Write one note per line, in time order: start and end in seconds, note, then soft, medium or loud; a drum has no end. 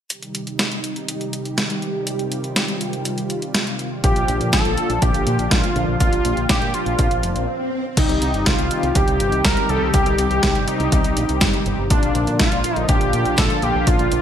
0.10 4.00 C3 medium
0.10 4.00 D#3 medium
0.10 4.00 G3 medium
0.10 2.05 D#4 medium
0.10 4.00 G4 medium
0.10 closed hi-hat medium
0.23 closed hi-hat soft
0.35 closed hi-hat medium
0.47 closed hi-hat soft
0.59 snare loud
0.59 closed hi-hat medium
0.72 closed hi-hat soft
0.84 closed hi-hat medium
0.96 closed hi-hat soft
1.08 closed hi-hat medium
1.21 closed hi-hat soft
1.33 closed hi-hat medium
1.45 closed hi-hat soft
1.58 snare loud
1.58 closed hi-hat medium
1.70 closed hi-hat soft
1.82 closed hi-hat soft
2.07 5.97 F4 medium
2.07 closed hi-hat medium
2.19 closed hi-hat soft
2.32 closed hi-hat medium
2.44 closed hi-hat soft
2.56 snare loud
2.56 closed hi-hat medium
2.68 closed hi-hat soft
2.81 closed hi-hat medium
2.93 closed hi-hat soft
3.05 closed hi-hat medium
3.18 closed hi-hat soft
3.30 closed hi-hat medium
3.42 closed hi-hat soft
3.55 snare loud
3.55 closed hi-hat medium
3.67 closed hi-hat soft
3.79 closed hi-hat soft
4.04 4.14 A#1 medium
4.04 7.45 A#2 medium
4.04 7.45 D3 medium
4.04 4.75 F3 medium
4.04 7.45 F3 medium
4.04 4.75 A#3 medium
4.04 4.75 D4 medium
4.04 7.45 D4 medium
4.04 4.75 F4 medium
4.04 4.49 G4 loud
4.04 kick loud
4.04 closed hi-hat medium
4.16 4.26 A#1 medium
4.16 closed hi-hat soft
4.28 4.38 A#1 medium
4.28 closed hi-hat medium
4.41 4.51 A#2 medium
4.41 closed hi-hat soft
4.53 4.63 A#1 medium
4.53 5.03 A4 loud
4.53 kick loud
4.53 snare loud
4.53 closed hi-hat medium
4.65 4.75 A#1 medium
4.65 closed hi-hat soft
4.77 5.73 F3 medium
4.77 5.73 A#3 medium
4.77 5.73 D4 medium
4.77 5.73 F4 medium
4.77 closed hi-hat medium
4.90 5.00 A#1 medium
4.90 closed hi-hat soft
5.02 5.12 A#1 medium
5.02 5.52 G4 loud
5.02 kick loud
5.02 closed hi-hat medium
5.14 5.24 A#1 medium
5.14 closed hi-hat soft
5.27 5.37 A#2 medium
5.27 closed hi-hat medium
5.39 5.49 A#1 medium
5.39 closed hi-hat soft
5.51 5.61 A#1 medium
5.51 5.99 F4 medium
5.51 kick loud
5.51 snare loud
5.51 closed hi-hat medium
5.64 closed hi-hat soft
5.76 5.86 A#1 medium
5.76 5.98 F3 medium
5.76 5.98 A#3 medium
5.76 5.98 D4 medium
5.76 5.98 F4 loud
5.76 closed hi-hat soft
5.88 5.98 A#1 medium
6.00 6.10 A#1 medium
6.00 6.71 F3 medium
6.00 6.71 A#3 medium
6.00 6.71 D4 medium
6.00 6.46 F4 medium
6.00 6.71 F4 medium
6.00 7.47 G4 medium
6.00 kick loud
6.00 closed hi-hat medium
6.12 6.23 A#1 medium
6.12 closed hi-hat soft
6.25 6.35 A#1 medium
6.25 closed hi-hat medium
6.37 6.47 A#1 medium
6.37 closed hi-hat soft
6.49 6.60 A#1 medium
6.49 6.75 G4 loud
6.49 kick loud
6.49 snare loud
6.49 closed hi-hat medium
6.62 6.72 A#2 medium
6.62 closed hi-hat soft
6.74 7.48 F3 medium
6.74 7.48 A#3 medium
6.74 7.48 D4 medium
6.74 7.48 F4 medium
6.74 7.48 F4 loud
6.74 closed hi-hat medium
6.86 6.96 A#1 medium
6.86 closed hi-hat soft
6.99 7.09 A#1 medium
6.99 kick loud
6.99 closed hi-hat medium
6.99 swell medium
7.11 7.21 A#1 medium
7.11 closed hi-hat soft
7.23 7.33 F1 medium
7.23 closed hi-hat medium
7.36 7.46 A#1 medium
7.36 closed hi-hat soft
7.97 8.07 C2 medium
7.97 11.87 C3 medium
7.97 11.87 D#3 medium
7.97 11.87 G3 medium
7.97 8.68 G3 medium
7.97 8.68 C4 medium
7.97 11.87 D#4 medium
7.97 8.68 D#4 medium
7.97 8.48 D#4 medium
7.97 11.87 G4 medium
7.97 8.68 G4 medium
7.97 kick loud
7.97 closed hi-hat medium
7.97 crash medium
8.09 8.19 C2 medium
8.09 closed hi-hat soft
8.22 8.32 C2 medium
8.22 closed hi-hat medium
8.34 8.44 G1 medium
8.34 closed hi-hat soft
8.46 8.56 C2 medium
8.46 8.97 F4 loud
8.46 kick loud
8.46 snare loud
8.46 closed hi-hat medium
8.59 8.69 C2 medium
8.59 closed hi-hat soft
8.71 9.66 G3 medium
8.71 9.66 C4 medium
8.71 9.66 D#4 medium
8.71 9.66 G4 medium
8.71 closed hi-hat medium
8.83 8.93 C2 medium
8.83 closed hi-hat soft
8.95 9.05 C2 loud
8.95 9.46 G4 loud
8.95 kick loud
8.95 closed hi-hat medium
9.08 9.18 C2 medium
9.08 closed hi-hat soft
9.20 9.30 G1 medium
9.20 closed hi-hat medium
9.32 9.42 C2 medium
9.32 closed hi-hat soft
9.45 9.55 C2 loud
9.45 9.71 A#4 loud
9.45 kick loud
9.45 snare loud
9.45 closed hi-hat medium
9.57 closed hi-hat soft
9.69 9.79 C2 medium
9.69 9.91 G3 medium
9.69 9.91 C4 medium
9.69 9.91 D#4 medium
9.69 9.91 G4 loud
9.69 9.93 A4 loud
9.69 closed hi-hat soft
9.81 9.92 C2 medium
9.94 10.04 C2 loud
9.94 10.65 G3 medium
9.94 10.65 C4 medium
9.94 10.65 D#4 medium
9.94 10.69 G4 loud
9.94 10.65 G4 medium
9.94 kick loud
9.94 closed hi-hat medium
10.06 10.16 C2 medium
10.06 closed hi-hat soft
10.18 10.28 C2 medium
10.18 closed hi-hat medium
10.31 10.41 C2 medium
10.31 closed hi-hat soft
10.43 10.53 C2 medium
10.43 kick loud
10.43 snare loud
10.43 closed hi-hat medium
10.55 10.65 G1 medium
10.55 closed hi-hat soft
10.68 11.63 G3 medium
10.68 11.63 C4 medium
10.68 11.63 D#4 medium
10.68 11.66 D#4 medium
10.68 11.63 G4 loud
10.68 closed hi-hat medium
10.80 10.90 C2 medium
10.80 closed hi-hat soft
10.92 11.02 C2 loud
10.92 kick loud
10.92 closed hi-hat medium
11.04 11.14 C2 medium
11.04 closed hi-hat soft
11.17 11.27 A#1 medium
11.17 closed hi-hat medium
11.29 11.39 C2 medium
11.29 closed hi-hat soft
11.41 11.51 G1 loud
11.41 kick loud
11.41 snare loud
11.41 closed hi-hat medium
11.54 closed hi-hat soft
11.66 11.76 G1 medium
11.66 11.84 G3 medium
11.66 11.84 C4 medium
11.66 11.84 D#4 medium
11.66 11.84 G4 medium
11.66 closed hi-hat soft
11.78 11.88 G1 medium
11.90 12.01 A#1 medium
11.90 14.22 A#2 medium
11.90 14.22 D3 medium
11.90 14.22 F3 medium
11.90 12.61 F3 medium
11.90 12.61 A#3 medium
11.90 14.22 D4 medium
11.90 12.61 D4 medium
11.90 12.37 D4 medium
11.90 12.61 F4 medium
11.90 14.22 F4 medium
11.90 kick loud
11.90 closed hi-hat medium
12.03 12.13 A#1 medium
12.03 closed hi-hat soft
12.15 12.25 A#1 medium
12.15 closed hi-hat medium
12.27 12.37 A#2 medium
12.27 closed hi-hat soft
12.40 12.50 A#1 loud
12.40 12.86 F4 medium
12.40 kick loud
12.40 snare loud
12.40 closed hi-hat medium
12.52 12.62 A#1 medium
12.52 closed hi-hat soft
12.64 13.60 F3 medium
12.64 13.60 A#3 medium
12.64 13.60 D4 medium
12.64 13.60 F4 medium
12.64 closed hi-hat medium
12.76 12.87 A#1 medium
12.76 closed hi-hat soft
12.89 12.99 A#1 medium
12.89 13.40 G4 loud
12.89 kick loud
12.89 closed hi-hat medium
13.01 13.11 A#1 medium
13.01 closed hi-hat soft
13.13 13.23 A#2 medium
13.13 closed hi-hat medium
13.25 13.36 A#1 medium
13.25 closed hi-hat soft
13.38 13.48 A#1 medium
13.38 13.65 A4 medium
13.38 kick loud
13.38 snare loud
13.38 closed hi-hat medium
13.50 closed hi-hat soft
13.62 13.73 A#1 medium
13.62 13.84 F3 loud
13.62 13.84 A#3 medium
13.62 13.84 D4 medium
13.62 13.84 F4 loud
13.62 13.89 G4 loud
13.62 closed hi-hat soft
13.75 13.85 A#1 medium
13.87 13.97 A#1 medium
13.87 14.22 F3 medium
13.87 14.22 A#3 medium
13.87 14.22 D4 medium
13.87 14.22 F4 medium
13.87 14.22 F4 loud
13.87 kick loud
13.87 closed hi-hat medium
13.99 14.10 A#1 medium
13.99 closed hi-hat soft
14.12 14.22 A#1 medium
14.12 closed hi-hat medium